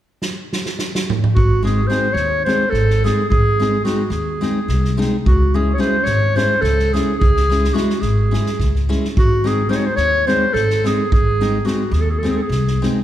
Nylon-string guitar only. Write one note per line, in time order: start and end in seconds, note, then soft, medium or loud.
1.63 1.80 G#3 medium
1.63 1.80 C4 soft
1.63 1.81 D#4 soft
1.63 1.81 G#4 medium
1.90 2.06 G#3 medium
1.90 2.06 C4 medium
1.90 2.07 D#4 medium
1.90 2.07 G#4 medium
2.46 2.63 G#3 medium
2.46 2.63 C4 medium
2.46 2.64 D#4 soft
2.46 2.64 G#4 medium
3.04 3.21 G#3 medium
3.04 3.21 C4 soft
3.04 3.21 D#4 medium
3.04 3.22 G#4 medium
3.60 3.76 G#3 medium
3.60 3.76 C4 soft
3.60 3.76 D#4 soft
3.60 3.77 G#4 medium
3.85 4.01 G#3 medium
3.85 4.01 C4 medium
3.85 4.02 D#4 medium
3.85 4.02 G#4 medium
4.41 4.58 G#3 medium
4.41 4.58 C4 medium
4.41 4.59 D#4 medium
4.41 4.59 G#4 medium
4.97 5.15 G#3 medium
4.97 5.15 C4 medium
4.97 5.16 D#4 medium
4.97 5.16 G#4 medium
5.54 5.71 G#3 medium
5.54 5.71 C#4 medium
5.54 5.71 E4 medium
5.54 5.71 G#4 medium
5.78 5.95 G#3 medium
5.78 5.96 C#4 medium
5.78 5.96 E4 medium
5.78 5.96 G#4 medium
6.36 6.53 G#3 medium
6.36 6.53 C#4 medium
6.36 6.54 E4 medium
6.36 6.54 G#4 medium
6.94 7.11 G#3 medium
6.94 7.11 C#4 medium
6.94 7.12 E4 medium
6.94 7.12 G#4 medium
7.50 7.66 G#3 medium
7.50 7.67 C#4 medium
7.50 7.67 E4 medium
7.50 7.67 G#4 medium
7.74 7.91 G#3 medium
7.74 7.91 C#4 medium
7.74 7.92 E4 medium
7.74 7.91 G#4 medium
8.31 8.48 G#3 medium
8.31 8.49 C#4 medium
8.31 8.49 E4 soft
8.31 8.50 G#4 medium
8.89 9.06 G#3 medium
8.89 9.06 C#4 medium
8.89 9.06 E4 medium
8.89 9.07 G#4 medium
9.44 9.61 G#3 medium
9.44 9.61 C4 medium
9.44 9.61 D#4 medium
9.44 9.62 G#4 medium
9.69 9.86 G#3 medium
9.69 9.86 C4 medium
9.69 9.87 D#4 medium
9.69 9.87 G#4 medium
10.27 10.44 G#3 medium
10.27 10.44 C4 medium
10.27 10.45 D#4 medium
10.27 10.45 G#4 medium
10.84 11.02 G#3 medium
10.84 11.02 C4 soft
10.84 11.02 D#4 medium
10.84 11.02 G#4 medium
11.41 11.57 G#3 medium
11.41 11.57 C4 soft
11.41 11.57 D#4 medium
11.41 11.57 G#4 medium
11.65 11.82 G#3 medium
11.65 11.82 C4 medium
11.65 11.83 D#4 medium
11.65 11.83 G#4 medium
12.23 12.40 G#3 medium
12.23 12.40 C4 medium
12.23 12.40 D#4 soft
12.23 12.41 G#4 medium
12.82 12.98 G#3 medium
12.82 12.99 C4 medium
12.82 12.99 D#4 soft
12.82 12.99 G#4 medium